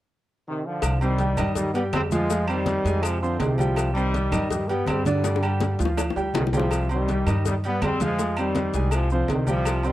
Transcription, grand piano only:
1.02 C4 C5 C6
1.20 G3 G4 G5
1.38 D#3 D#4 D#5
1.75 G3 G4 G5
2.12 F3 F4 F5
2.30 F3 F4 F5
2.49 C4 C5 C6
2.86 G#3 G#4 G#5
3.23 C4 C5 C6
3.59 G3 G4 G5
3.96 C4 C5 C6
4.14 G3 G4 G5
4.32 D#3 D#4 D#5
4.69 G3 G4 G5
5.06 D3 D4 D5
5.24 D3 D4 D5
5.43 G3 G4 G5
5.80 F3 F4 F5
6.16 G3 G4 G5
6.53 G3 G4 G5
6.91 C4 C5 C6
7.10 G3 G4 G5
7.28 D#3 D#4 D#5
7.65 G3 G4 G5
8.01 F3 F4 F5
8.19 F3 F4 F5
8.38 C4 C5 C6
8.75 G#3 G#4 G#5
9.12 C4 C5 C6
9.47 G3 G4 G5
9.84 C4 C5 C6

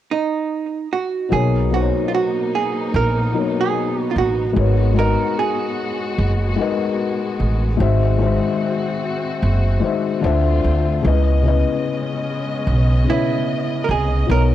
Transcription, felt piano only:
1.29 B2 F#3 D#4
1.33 A#4 C#5
1.70 B2 F#3 D#4
1.74 A#4 C5
1.82 C#5
3.32 B2 F#3 D#4
3.36 A#4 C#5
4.53 G#3 D#4 F#4 A#4
4.58 B4 C#5
4.94 G#3 D#4 F#4 A#4
4.98 B3 D#5
6.56 G#3 D#4 F#4 A#4
6.61 B4 D#5
7.77 D#3 G#3 F#4
7.81 C5 E5
8.18 D#3 G#3 F#4
8.22 C5 E5
9.80 D#3 G#3 F#4
9.84 C5 E5
10.21 D3 D4 F4 C5
10.26 E5
11.02 C#3 C#4 E4
11.06 B4 D#5
11.43 C#3 C#4 E4
11.47 B4 D#5
13.04 C#3 C#4 E4
13.09 B4 C#5
14.27 B2 B3 D#4
14.31 A#4 C#5

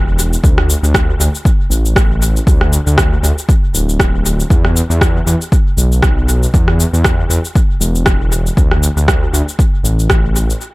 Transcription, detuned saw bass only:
Already playing: E1
0.44 D2
0.83 D2
1.19 D2
1.70 A1
2.47 D2
2.86 D2
3.23 D2
3.74 D1
4.50 E2
4.90 E2
5.26 E2
5.77 B1
6.54 E2
6.93 E2
7.30 E2
7.80 E1
8.57 D2
8.96 D2
9.33 D2
9.84 A1

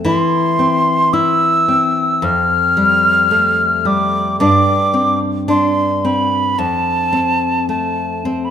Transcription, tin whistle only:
0.08 C6
1.13 E6
2.24 F6
3.87 D6
4.40 D6
5.50 C6
6.06 B5
6.59 A5
7.69 A5
8.45 B5

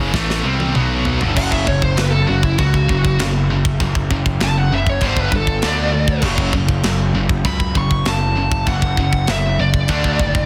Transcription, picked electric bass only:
Already playing: F#1
0.14 A1
0.45 C2
0.76 B1
1.23 G1
1.37 F#1
1.67 F#1
1.97 F#1
2.29 F#1
2.58 C#2
2.89 F#1
3.20 F#1
3.80 F#1
4.11 F#1
4.41 F#1
4.71 F#1
5.02 G1
5.32 G1
5.64 D2
6.22 F#1
6.53 F#1
6.84 F#1
7.14 F#1
7.45 C#2
7.76 F#1
8.06 F#1
8.67 F#1
8.98 F#1
9.28 F#1
9.59 F#1
9.89 D2
10.20 F#1

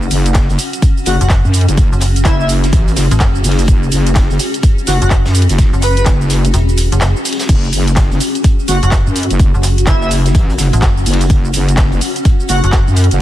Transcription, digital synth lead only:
1.06 F#4
1.21 F#4
2.25 E4
2.40 E4
4.87 F#4
5.02 F#4
5.82 B4
5.97 B4
8.68 F#4
8.83 F#4
9.87 E4
10.02 E4
12.49 F#4
12.64 F#4

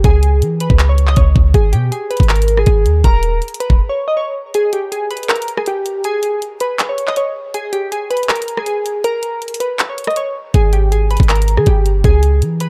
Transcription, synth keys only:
0.05 G#4
0.61 B4
0.89 C#5
1.08 D#5
1.17 C#5
1.54 G#4
1.73 G4
1.92 G#4
2.10 B4
2.29 A#4
2.59 G#4
2.66 G#4
3.04 A#4
3.60 B4
3.89 C#5
4.08 D#5
4.17 C#5
4.55 G#4
4.73 G4
4.92 G#4
5.11 B4
5.29 A#4
5.57 G#4
5.67 G4
6.05 G#4
6.61 B4
6.89 C#5
7.08 D#5
7.17 C#5
7.54 G#4
7.73 G4
7.92 G#4
8.10 B4
8.29 A#4
8.59 G#4
8.67 G#4
9.04 A#4
9.60 B4
9.89 C#5
10.08 D#5
10.17 C#5
10.55 G#4
10.73 G4
10.92 G#4
11.11 B4
11.29 A#4
11.57 G#4
11.67 G4
12.05 G#4
12.61 B4

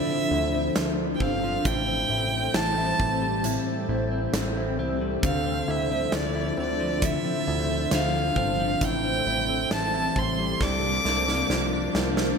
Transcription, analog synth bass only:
0.31 D2
0.76 D2
1.21 G1
1.65 A1
2.10 A1
2.54 A1
2.99 A1
3.89 A1
4.33 A1
4.78 C2
5.23 D2
5.68 D2
6.12 D2
6.58 D2
7.48 D2
7.92 D2
8.36 G1
8.82 A1
9.26 A1
9.71 A1
10.16 A1
10.61 C2
11.05 C2
11.50 C2
11.95 C2

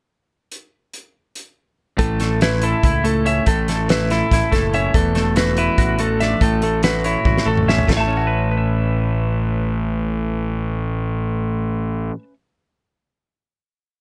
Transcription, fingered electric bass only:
1.99 A1
2.83 C#2
3.47 A1
4.31 A1
4.52 F#1
4.94 E1
5.78 A1
6.41 A1
7.25 A1
7.46 A1
7.88 A1

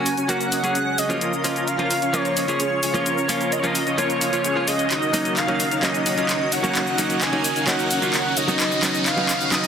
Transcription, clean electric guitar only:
0.28 F#3 A#3 C#4 F#4
0.63 F#3 A#3 C#4 G#4
1.09 F3 A#3 C#4 F4
1.44 F3 A#3 C#4 F4
1.78 F3 A#3 C#4 F4
2.13 F3 A#3 C#4 F4
2.48 F3 A#3 C#4 G#4
2.94 F3 A#3 C#4 F4
3.28 F3 A#3 C#4 F4
3.63 F3 A#3 C#4 F4
3.98 F3 A#3 C#4 F4
4.32 F3 A#3 C#4 F4
4.55 F3 A#3 C#4 F4
5.13 F#3 A#3 C#4 D#4
5.47 F#3 A#3 C#4 D#4
5.82 F#3 A#3 C#4 D#4
6.17 F#3 A#3 C#4 F4
6.63 F#3 A#3 C#4 D#4
6.98 F#3 A#3 C#4 D#4
7.32 F#3 A#3 C#4 D#4
7.67 F#3 A#3 C#4 D#4
8.01 F#3 A#3 C#4 F4
8.48 F#3 B3 C#4 D#4
8.82 F#3 B3 C#4 D#4
9.17 F#3 B3 C#4 D#4
9.51 F#3 B3 C#4 D#4

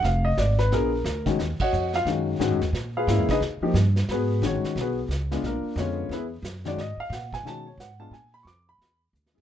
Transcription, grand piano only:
0.05 F5
0.25 D#5
0.39 D5
0.59 B4
0.72 B3 D4 F4 G#4 A#4
1.26 D#3 G#3 C#4 F#4
1.61 F#4 C#5 D#5 F#5
1.95 F4 F5
2.07 D#3 G#3 C#4 F#4
2.40 D#3 G#3 C#4 F#4
2.97 F4 G#4 B4 F5
3.09 G#3 A#3 C#4 E4
3.31 D#4 G#4 B4 D#5
3.62 F3 A#3 D#4 G4
4.11 B3 F#4 G#4 B4
4.43 D#3 G#3 C#4 F#4 C#5
4.81 B3 F#4 G#4 B4
5.31 G#3 B3 D4 F4
5.46 A#3 D4 F4 A#4
5.79 D3 G#3 B3 C#4 F4 C#5
6.13 B3 E4 G#4 B4
6.65 D#3 G#3 C#4 F#4 D5
6.81 D#5
7.00 F5
7.13 F#5
7.34 G#5
7.45 D#3 G#3 C#4 F#4 A5
7.67 C#5
7.80 F#5
7.99 G#3 B3 D4 F4 A5
8.13 G#5
8.34 B5
8.43 C#6
8.47 D6
8.69 B5
9.34 F#3 B3 E4 G#4

